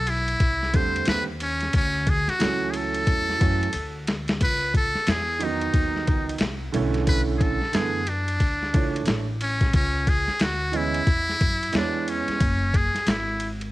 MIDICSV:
0, 0, Header, 1, 6, 480
1, 0, Start_track
1, 0, Tempo, 666667
1, 1253, Time_signature, 4, 2, 24, 8
1, 9878, End_track
2, 0, Start_track
2, 0, Title_t, "Muted trumpet"
2, 0, Program_c, 0, 59
2, 0, Note_on_c, 0, 69, 101
2, 66, Note_on_c, 0, 64, 104
2, 77, Note_off_c, 0, 69, 0
2, 546, Note_on_c, 0, 72, 94
2, 557, Note_off_c, 0, 64, 0
2, 780, Note_off_c, 0, 72, 0
2, 786, Note_on_c, 0, 71, 100
2, 891, Note_off_c, 0, 71, 0
2, 1026, Note_on_c, 0, 61, 97
2, 1243, Note_off_c, 0, 61, 0
2, 1267, Note_on_c, 0, 61, 107
2, 1510, Note_on_c, 0, 68, 96
2, 1521, Note_off_c, 0, 61, 0
2, 1653, Note_on_c, 0, 66, 100
2, 1664, Note_off_c, 0, 68, 0
2, 1951, Note_on_c, 0, 68, 59
2, 1962, Note_off_c, 0, 66, 0
2, 1991, Note_on_c, 0, 69, 107
2, 2001, Note_off_c, 0, 68, 0
2, 2942, Note_off_c, 0, 69, 0
2, 3192, Note_on_c, 0, 71, 111
2, 3406, Note_off_c, 0, 71, 0
2, 3432, Note_on_c, 0, 69, 101
2, 3674, Note_on_c, 0, 68, 92
2, 3684, Note_off_c, 0, 69, 0
2, 3917, Note_on_c, 0, 63, 88
2, 3928, Note_off_c, 0, 68, 0
2, 4625, Note_off_c, 0, 63, 0
2, 5105, Note_on_c, 0, 71, 113
2, 5193, Note_off_c, 0, 71, 0
2, 5309, Note_on_c, 0, 68, 71
2, 5344, Note_on_c, 0, 69, 97
2, 5355, Note_off_c, 0, 68, 0
2, 5584, Note_on_c, 0, 68, 94
2, 5595, Note_off_c, 0, 69, 0
2, 5827, Note_on_c, 0, 62, 95
2, 5838, Note_off_c, 0, 68, 0
2, 6540, Note_off_c, 0, 62, 0
2, 6788, Note_on_c, 0, 61, 100
2, 7004, Note_off_c, 0, 61, 0
2, 7026, Note_on_c, 0, 61, 105
2, 7268, Note_on_c, 0, 68, 106
2, 7278, Note_off_c, 0, 61, 0
2, 7507, Note_on_c, 0, 66, 100
2, 7517, Note_off_c, 0, 68, 0
2, 7750, Note_on_c, 0, 64, 114
2, 7761, Note_off_c, 0, 66, 0
2, 8461, Note_off_c, 0, 64, 0
2, 8473, Note_on_c, 0, 62, 94
2, 8710, Note_on_c, 0, 61, 102
2, 8721, Note_off_c, 0, 62, 0
2, 9191, Note_on_c, 0, 68, 92
2, 9202, Note_off_c, 0, 61, 0
2, 9430, Note_on_c, 0, 64, 85
2, 9440, Note_off_c, 0, 68, 0
2, 9717, Note_off_c, 0, 64, 0
2, 9878, End_track
3, 0, Start_track
3, 0, Title_t, "Grand piano"
3, 0, Program_c, 1, 0
3, 521, Note_on_c, 1, 50, 49
3, 529, Note_on_c, 1, 55, 51
3, 537, Note_on_c, 1, 57, 47
3, 546, Note_on_c, 1, 60, 59
3, 885, Note_off_c, 1, 50, 0
3, 889, Note_off_c, 1, 55, 0
3, 893, Note_off_c, 1, 57, 0
3, 898, Note_off_c, 1, 60, 0
3, 1720, Note_on_c, 1, 52, 73
3, 1728, Note_on_c, 1, 54, 63
3, 1737, Note_on_c, 1, 57, 61
3, 1746, Note_on_c, 1, 61, 74
3, 2410, Note_off_c, 1, 52, 0
3, 2414, Note_off_c, 1, 54, 0
3, 2418, Note_off_c, 1, 57, 0
3, 2423, Note_off_c, 1, 61, 0
3, 2442, Note_on_c, 1, 52, 63
3, 2450, Note_on_c, 1, 54, 55
3, 2458, Note_on_c, 1, 57, 54
3, 2467, Note_on_c, 1, 61, 69
3, 2632, Note_off_c, 1, 52, 0
3, 2636, Note_off_c, 1, 54, 0
3, 2640, Note_off_c, 1, 57, 0
3, 2644, Note_off_c, 1, 61, 0
3, 3882, Note_on_c, 1, 51, 49
3, 3891, Note_on_c, 1, 54, 57
3, 3898, Note_on_c, 1, 59, 58
3, 3907, Note_on_c, 1, 63, 67
3, 3917, Note_off_c, 1, 51, 0
3, 3928, Note_on_c, 1, 51, 69
3, 4575, Note_off_c, 1, 54, 0
3, 4578, Note_off_c, 1, 59, 0
3, 4583, Note_off_c, 1, 63, 0
3, 4593, Note_off_c, 1, 51, 0
3, 4839, Note_on_c, 1, 50, 82
3, 4849, Note_on_c, 1, 52, 85
3, 4856, Note_on_c, 1, 57, 83
3, 4864, Note_on_c, 1, 61, 94
3, 5445, Note_off_c, 1, 50, 0
3, 5450, Note_off_c, 1, 52, 0
3, 5454, Note_off_c, 1, 57, 0
3, 5457, Note_off_c, 1, 61, 0
3, 5559, Note_on_c, 1, 50, 67
3, 5568, Note_on_c, 1, 52, 59
3, 5576, Note_on_c, 1, 57, 58
3, 5584, Note_on_c, 1, 59, 69
3, 5750, Note_off_c, 1, 50, 0
3, 5755, Note_off_c, 1, 52, 0
3, 5759, Note_off_c, 1, 57, 0
3, 5763, Note_off_c, 1, 59, 0
3, 6283, Note_on_c, 1, 62, 57
3, 6291, Note_on_c, 1, 52, 50
3, 6299, Note_on_c, 1, 57, 53
3, 6307, Note_on_c, 1, 73, 65
3, 6646, Note_off_c, 1, 62, 0
3, 6650, Note_off_c, 1, 52, 0
3, 6654, Note_off_c, 1, 57, 0
3, 6658, Note_off_c, 1, 73, 0
3, 7717, Note_on_c, 1, 52, 80
3, 7727, Note_on_c, 1, 56, 74
3, 7736, Note_on_c, 1, 59, 64
3, 7743, Note_on_c, 1, 61, 76
3, 7910, Note_off_c, 1, 52, 0
3, 7915, Note_off_c, 1, 56, 0
3, 7919, Note_off_c, 1, 59, 0
3, 7923, Note_off_c, 1, 61, 0
3, 8439, Note_on_c, 1, 52, 65
3, 8447, Note_on_c, 1, 56, 64
3, 8457, Note_on_c, 1, 59, 63
3, 8465, Note_on_c, 1, 73, 67
3, 8926, Note_off_c, 1, 52, 0
3, 8930, Note_off_c, 1, 56, 0
3, 8935, Note_off_c, 1, 59, 0
3, 8939, Note_off_c, 1, 73, 0
3, 9878, End_track
4, 0, Start_track
4, 0, Title_t, "Upright bass"
4, 0, Program_c, 2, 32
4, 0, Note_on_c, 2, 35, 97
4, 268, Note_off_c, 2, 35, 0
4, 289, Note_on_c, 2, 36, 77
4, 519, Note_off_c, 2, 36, 0
4, 534, Note_on_c, 2, 40, 87
4, 761, Note_off_c, 2, 40, 0
4, 773, Note_on_c, 2, 39, 92
4, 1229, Note_off_c, 2, 39, 0
4, 1252, Note_on_c, 2, 38, 101
4, 1621, Note_off_c, 2, 38, 0
4, 1731, Note_on_c, 2, 37, 85
4, 2188, Note_off_c, 2, 37, 0
4, 2211, Note_on_c, 2, 40, 81
4, 2440, Note_off_c, 2, 40, 0
4, 2455, Note_on_c, 2, 42, 83
4, 2682, Note_off_c, 2, 42, 0
4, 2694, Note_on_c, 2, 38, 82
4, 3149, Note_off_c, 2, 38, 0
4, 3176, Note_on_c, 2, 37, 98
4, 3543, Note_off_c, 2, 37, 0
4, 3653, Note_on_c, 2, 40, 98
4, 4109, Note_off_c, 2, 40, 0
4, 4131, Note_on_c, 2, 39, 81
4, 4360, Note_off_c, 2, 39, 0
4, 4376, Note_on_c, 2, 37, 83
4, 4603, Note_off_c, 2, 37, 0
4, 4616, Note_on_c, 2, 36, 82
4, 4842, Note_off_c, 2, 36, 0
4, 4856, Note_on_c, 2, 35, 105
4, 5453, Note_off_c, 2, 35, 0
4, 5574, Note_on_c, 2, 42, 93
4, 6049, Note_off_c, 2, 42, 0
4, 6049, Note_on_c, 2, 38, 89
4, 6279, Note_off_c, 2, 38, 0
4, 6295, Note_on_c, 2, 37, 94
4, 6522, Note_off_c, 2, 37, 0
4, 6530, Note_on_c, 2, 33, 82
4, 6987, Note_off_c, 2, 33, 0
4, 7012, Note_on_c, 2, 37, 113
4, 7381, Note_off_c, 2, 37, 0
4, 7493, Note_on_c, 2, 38, 83
4, 7949, Note_off_c, 2, 38, 0
4, 7969, Note_on_c, 2, 40, 93
4, 8199, Note_off_c, 2, 40, 0
4, 8214, Note_on_c, 2, 42, 84
4, 8441, Note_off_c, 2, 42, 0
4, 8450, Note_on_c, 2, 40, 79
4, 8820, Note_off_c, 2, 40, 0
4, 8933, Note_on_c, 2, 30, 98
4, 9301, Note_off_c, 2, 30, 0
4, 9409, Note_on_c, 2, 32, 79
4, 9867, Note_off_c, 2, 32, 0
4, 9878, End_track
5, 0, Start_track
5, 0, Title_t, "Muted upright bass strokes"
5, 1643, Note_on_c, 9, 29, 48
5, 1715, Note_off_c, 9, 29, 0
5, 3565, Note_on_c, 9, 29, 47
5, 3637, Note_off_c, 9, 29, 0
5, 5481, Note_on_c, 9, 29, 49
5, 5553, Note_off_c, 9, 29, 0
5, 7402, Note_on_c, 9, 29, 51
5, 7474, Note_off_c, 9, 29, 0
5, 8842, Note_on_c, 9, 29, 43
5, 8914, Note_off_c, 9, 29, 0
5, 9320, Note_on_c, 9, 29, 50
5, 9392, Note_off_c, 9, 29, 0
5, 9878, End_track
6, 0, Start_track
6, 0, Title_t, "Drums"
6, 49, Note_on_c, 9, 51, 64
6, 121, Note_off_c, 9, 51, 0
6, 201, Note_on_c, 9, 51, 41
6, 273, Note_off_c, 9, 51, 0
6, 289, Note_on_c, 9, 51, 60
6, 290, Note_on_c, 9, 36, 78
6, 361, Note_off_c, 9, 51, 0
6, 362, Note_off_c, 9, 36, 0
6, 452, Note_on_c, 9, 38, 33
6, 524, Note_off_c, 9, 38, 0
6, 530, Note_on_c, 9, 51, 59
6, 533, Note_on_c, 9, 36, 96
6, 602, Note_off_c, 9, 51, 0
6, 605, Note_off_c, 9, 36, 0
6, 690, Note_on_c, 9, 51, 46
6, 759, Note_off_c, 9, 51, 0
6, 759, Note_on_c, 9, 44, 48
6, 759, Note_on_c, 9, 51, 62
6, 776, Note_on_c, 9, 38, 115
6, 831, Note_off_c, 9, 44, 0
6, 831, Note_off_c, 9, 51, 0
6, 848, Note_off_c, 9, 38, 0
6, 1010, Note_on_c, 9, 51, 65
6, 1082, Note_off_c, 9, 51, 0
6, 1156, Note_on_c, 9, 51, 38
6, 1171, Note_on_c, 9, 38, 31
6, 1228, Note_off_c, 9, 51, 0
6, 1243, Note_off_c, 9, 38, 0
6, 1247, Note_on_c, 9, 51, 86
6, 1251, Note_on_c, 9, 36, 92
6, 1319, Note_off_c, 9, 51, 0
6, 1323, Note_off_c, 9, 36, 0
6, 1489, Note_on_c, 9, 51, 55
6, 1490, Note_on_c, 9, 36, 85
6, 1561, Note_off_c, 9, 51, 0
6, 1562, Note_off_c, 9, 36, 0
6, 1642, Note_on_c, 9, 38, 37
6, 1648, Note_on_c, 9, 51, 44
6, 1714, Note_off_c, 9, 38, 0
6, 1720, Note_off_c, 9, 51, 0
6, 1728, Note_on_c, 9, 44, 56
6, 1728, Note_on_c, 9, 51, 76
6, 1740, Note_on_c, 9, 38, 106
6, 1800, Note_off_c, 9, 44, 0
6, 1800, Note_off_c, 9, 51, 0
6, 1812, Note_off_c, 9, 38, 0
6, 1970, Note_on_c, 9, 51, 64
6, 2042, Note_off_c, 9, 51, 0
6, 2121, Note_on_c, 9, 51, 47
6, 2193, Note_off_c, 9, 51, 0
6, 2211, Note_on_c, 9, 36, 79
6, 2211, Note_on_c, 9, 51, 60
6, 2283, Note_off_c, 9, 36, 0
6, 2283, Note_off_c, 9, 51, 0
6, 2374, Note_on_c, 9, 38, 31
6, 2446, Note_off_c, 9, 38, 0
6, 2455, Note_on_c, 9, 51, 60
6, 2456, Note_on_c, 9, 36, 94
6, 2527, Note_off_c, 9, 51, 0
6, 2528, Note_off_c, 9, 36, 0
6, 2613, Note_on_c, 9, 51, 43
6, 2684, Note_off_c, 9, 51, 0
6, 2684, Note_on_c, 9, 44, 45
6, 2684, Note_on_c, 9, 51, 63
6, 2756, Note_off_c, 9, 44, 0
6, 2756, Note_off_c, 9, 51, 0
6, 2934, Note_on_c, 9, 51, 63
6, 2941, Note_on_c, 9, 38, 87
6, 3006, Note_off_c, 9, 51, 0
6, 3013, Note_off_c, 9, 38, 0
6, 3082, Note_on_c, 9, 51, 38
6, 3091, Note_on_c, 9, 38, 94
6, 3154, Note_off_c, 9, 51, 0
6, 3163, Note_off_c, 9, 38, 0
6, 3174, Note_on_c, 9, 51, 93
6, 3175, Note_on_c, 9, 36, 96
6, 3246, Note_off_c, 9, 51, 0
6, 3247, Note_off_c, 9, 36, 0
6, 3414, Note_on_c, 9, 36, 82
6, 3418, Note_on_c, 9, 51, 54
6, 3486, Note_off_c, 9, 36, 0
6, 3490, Note_off_c, 9, 51, 0
6, 3567, Note_on_c, 9, 38, 33
6, 3639, Note_off_c, 9, 38, 0
6, 3649, Note_on_c, 9, 44, 53
6, 3649, Note_on_c, 9, 51, 73
6, 3660, Note_on_c, 9, 38, 120
6, 3721, Note_off_c, 9, 44, 0
6, 3721, Note_off_c, 9, 51, 0
6, 3732, Note_off_c, 9, 38, 0
6, 3892, Note_on_c, 9, 51, 62
6, 3964, Note_off_c, 9, 51, 0
6, 4042, Note_on_c, 9, 51, 40
6, 4114, Note_off_c, 9, 51, 0
6, 4130, Note_on_c, 9, 51, 60
6, 4132, Note_on_c, 9, 36, 85
6, 4202, Note_off_c, 9, 51, 0
6, 4204, Note_off_c, 9, 36, 0
6, 4292, Note_on_c, 9, 38, 31
6, 4364, Note_off_c, 9, 38, 0
6, 4373, Note_on_c, 9, 51, 56
6, 4376, Note_on_c, 9, 36, 94
6, 4445, Note_off_c, 9, 51, 0
6, 4448, Note_off_c, 9, 36, 0
6, 4532, Note_on_c, 9, 51, 43
6, 4597, Note_off_c, 9, 51, 0
6, 4597, Note_on_c, 9, 44, 45
6, 4597, Note_on_c, 9, 51, 64
6, 4614, Note_on_c, 9, 38, 107
6, 4669, Note_off_c, 9, 44, 0
6, 4669, Note_off_c, 9, 51, 0
6, 4686, Note_off_c, 9, 38, 0
6, 4852, Note_on_c, 9, 51, 59
6, 4924, Note_off_c, 9, 51, 0
6, 4998, Note_on_c, 9, 51, 37
6, 5013, Note_on_c, 9, 38, 34
6, 5070, Note_off_c, 9, 51, 0
6, 5085, Note_off_c, 9, 38, 0
6, 5090, Note_on_c, 9, 51, 92
6, 5093, Note_on_c, 9, 36, 107
6, 5162, Note_off_c, 9, 51, 0
6, 5165, Note_off_c, 9, 36, 0
6, 5331, Note_on_c, 9, 36, 90
6, 5333, Note_on_c, 9, 51, 55
6, 5403, Note_off_c, 9, 36, 0
6, 5405, Note_off_c, 9, 51, 0
6, 5483, Note_on_c, 9, 38, 36
6, 5555, Note_off_c, 9, 38, 0
6, 5566, Note_on_c, 9, 44, 49
6, 5566, Note_on_c, 9, 51, 73
6, 5577, Note_on_c, 9, 38, 104
6, 5638, Note_off_c, 9, 44, 0
6, 5638, Note_off_c, 9, 51, 0
6, 5649, Note_off_c, 9, 38, 0
6, 5808, Note_on_c, 9, 51, 62
6, 5880, Note_off_c, 9, 51, 0
6, 5961, Note_on_c, 9, 51, 44
6, 6033, Note_off_c, 9, 51, 0
6, 6048, Note_on_c, 9, 51, 64
6, 6049, Note_on_c, 9, 36, 78
6, 6120, Note_off_c, 9, 51, 0
6, 6121, Note_off_c, 9, 36, 0
6, 6211, Note_on_c, 9, 38, 32
6, 6283, Note_off_c, 9, 38, 0
6, 6292, Note_on_c, 9, 51, 60
6, 6294, Note_on_c, 9, 36, 99
6, 6364, Note_off_c, 9, 51, 0
6, 6366, Note_off_c, 9, 36, 0
6, 6451, Note_on_c, 9, 51, 45
6, 6520, Note_off_c, 9, 51, 0
6, 6520, Note_on_c, 9, 44, 49
6, 6520, Note_on_c, 9, 51, 68
6, 6537, Note_on_c, 9, 38, 117
6, 6592, Note_off_c, 9, 44, 0
6, 6592, Note_off_c, 9, 51, 0
6, 6609, Note_off_c, 9, 38, 0
6, 6773, Note_on_c, 9, 51, 68
6, 6845, Note_off_c, 9, 51, 0
6, 6917, Note_on_c, 9, 51, 39
6, 6919, Note_on_c, 9, 36, 83
6, 6932, Note_on_c, 9, 38, 35
6, 6989, Note_off_c, 9, 51, 0
6, 6991, Note_off_c, 9, 36, 0
6, 7004, Note_off_c, 9, 38, 0
6, 7008, Note_on_c, 9, 51, 86
6, 7012, Note_on_c, 9, 36, 100
6, 7080, Note_off_c, 9, 51, 0
6, 7084, Note_off_c, 9, 36, 0
6, 7251, Note_on_c, 9, 36, 88
6, 7251, Note_on_c, 9, 51, 57
6, 7323, Note_off_c, 9, 36, 0
6, 7323, Note_off_c, 9, 51, 0
6, 7401, Note_on_c, 9, 38, 36
6, 7473, Note_off_c, 9, 38, 0
6, 7484, Note_on_c, 9, 44, 57
6, 7484, Note_on_c, 9, 51, 76
6, 7495, Note_on_c, 9, 38, 113
6, 7556, Note_off_c, 9, 44, 0
6, 7556, Note_off_c, 9, 51, 0
6, 7567, Note_off_c, 9, 38, 0
6, 7727, Note_on_c, 9, 51, 64
6, 7799, Note_off_c, 9, 51, 0
6, 7879, Note_on_c, 9, 51, 45
6, 7951, Note_off_c, 9, 51, 0
6, 7970, Note_on_c, 9, 36, 82
6, 7970, Note_on_c, 9, 51, 65
6, 8042, Note_off_c, 9, 36, 0
6, 8042, Note_off_c, 9, 51, 0
6, 8131, Note_on_c, 9, 38, 34
6, 8203, Note_off_c, 9, 38, 0
6, 8214, Note_on_c, 9, 36, 87
6, 8214, Note_on_c, 9, 51, 58
6, 8286, Note_off_c, 9, 36, 0
6, 8286, Note_off_c, 9, 51, 0
6, 8372, Note_on_c, 9, 51, 41
6, 8443, Note_off_c, 9, 51, 0
6, 8443, Note_on_c, 9, 44, 46
6, 8443, Note_on_c, 9, 51, 64
6, 8460, Note_on_c, 9, 38, 104
6, 8515, Note_off_c, 9, 44, 0
6, 8515, Note_off_c, 9, 51, 0
6, 8532, Note_off_c, 9, 38, 0
6, 8695, Note_on_c, 9, 51, 60
6, 8767, Note_off_c, 9, 51, 0
6, 8840, Note_on_c, 9, 51, 38
6, 8855, Note_on_c, 9, 38, 34
6, 8912, Note_off_c, 9, 51, 0
6, 8927, Note_off_c, 9, 38, 0
6, 8930, Note_on_c, 9, 51, 89
6, 8932, Note_on_c, 9, 36, 98
6, 9002, Note_off_c, 9, 51, 0
6, 9004, Note_off_c, 9, 36, 0
6, 9171, Note_on_c, 9, 36, 87
6, 9173, Note_on_c, 9, 51, 60
6, 9243, Note_off_c, 9, 36, 0
6, 9245, Note_off_c, 9, 51, 0
6, 9322, Note_on_c, 9, 38, 35
6, 9329, Note_on_c, 9, 51, 43
6, 9394, Note_off_c, 9, 38, 0
6, 9401, Note_off_c, 9, 51, 0
6, 9407, Note_on_c, 9, 44, 55
6, 9407, Note_on_c, 9, 51, 71
6, 9419, Note_on_c, 9, 38, 110
6, 9479, Note_off_c, 9, 44, 0
6, 9479, Note_off_c, 9, 51, 0
6, 9491, Note_off_c, 9, 38, 0
6, 9648, Note_on_c, 9, 51, 58
6, 9720, Note_off_c, 9, 51, 0
6, 9801, Note_on_c, 9, 51, 43
6, 9873, Note_off_c, 9, 51, 0
6, 9878, End_track
0, 0, End_of_file